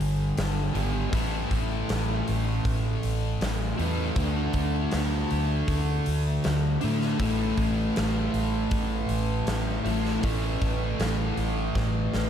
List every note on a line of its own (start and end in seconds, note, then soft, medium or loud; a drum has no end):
0.00 0.30 G1 medium
0.00 0.71 G2 medium
0.00 0.72 D3 medium
0.00 0.71 G3 medium
0.00 open hi-hat medium
0.37 0.68 G1 medium
0.37 snare loud
0.37 open hi-hat medium
0.73 1.06 G#1 medium
0.73 1.11 G2 medium
0.73 1.10 D3 medium
0.73 1.09 G3 medium
0.73 open hi-hat medium
1.10 1.44 A1 medium
1.10 3.74 A2 medium
1.10 3.75 E3 medium
1.10 3.77 A3 medium
1.10 kick loud
1.10 open hi-hat medium
1.51 1.82 A1 medium
1.51 kick medium
1.51 open hi-hat medium
1.89 2.20 A1 medium
1.89 snare loud
1.89 open hi-hat medium
2.28 2.59 A1 medium
2.28 open hi-hat medium
2.65 2.96 A1 medium
2.65 kick medium
2.65 open hi-hat medium
3.03 3.34 A1 medium
3.03 open hi-hat soft
3.41 3.72 A1 medium
3.41 snare loud
3.41 open hi-hat medium
3.77 4.10 E2 medium
3.77 4.15 A2 medium
3.77 4.14 E3 medium
3.77 4.18 A3 medium
3.77 open hi-hat soft
4.16 4.48 D2 medium
4.16 6.79 D3 medium
4.16 6.83 A3 medium
4.16 kick loud
4.16 open hi-hat medium
4.20 6.80 D4 medium
4.53 4.86 D2 medium
4.53 kick medium
4.53 open hi-hat medium
4.91 5.24 D2 medium
4.91 snare loud
4.91 open hi-hat medium
5.31 5.62 D2 medium
5.31 open hi-hat medium
5.68 5.99 D2 medium
5.68 kick medium
5.68 open hi-hat medium
6.06 6.38 D2 medium
6.06 open hi-hat medium
6.44 6.76 D2 medium
6.44 snare loud
6.44 open hi-hat medium
6.81 7.14 A2 medium
6.81 7.18 D3 medium
6.81 7.20 A3 medium
6.81 7.17 D4 medium
6.81 open hi-hat medium
7.01 snare soft
7.19 7.51 A1 medium
7.19 9.87 A2 medium
7.19 9.86 E3 medium
7.19 9.84 A3 loud
7.19 kick loud
7.19 open hi-hat medium
7.57 7.89 A1 medium
7.57 kick medium
7.57 open hi-hat medium
7.96 8.28 A1 medium
7.96 snare loud
7.96 open hi-hat medium
8.34 8.65 A1 medium
8.34 open hi-hat soft
8.71 9.03 A1 medium
8.71 kick loud
8.71 open hi-hat medium
9.09 9.41 A1 medium
9.09 open hi-hat medium
9.47 9.78 A1 medium
9.47 snare loud
9.47 open hi-hat medium
9.84 10.17 A1 medium
9.84 10.20 A2 medium
9.84 10.23 E3 medium
9.84 10.24 A3 medium
9.84 open hi-hat medium
10.05 snare soft
10.21 10.55 A1 medium
10.21 12.30 A2 medium
10.21 12.30 E3 medium
10.21 12.30 A3 medium
10.21 kick loud
10.21 open hi-hat medium
10.62 10.93 A1 medium
10.62 kick medium
10.62 open hi-hat medium
10.99 11.31 A1 medium
10.99 snare loud
10.99 open hi-hat medium
11.37 11.69 A1 medium
11.37 open hi-hat soft
11.75 12.07 A1 medium
11.75 kick loud
11.75 snare medium
12.14 12.30 A1 medium
12.14 snare medium